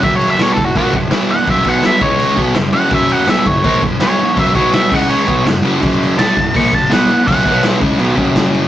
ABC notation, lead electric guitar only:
X:1
M:4/4
L:1/8
Q:1/4=166
K:F#mix
V:1 name="Lead electric guitar"
(3e c e (3c =A F F z2 f | e f e c2 z2 f | e f e c2 z c2 | e c e f c2 z2 |
z2 =a2 c' a f2 | f2 z6 |]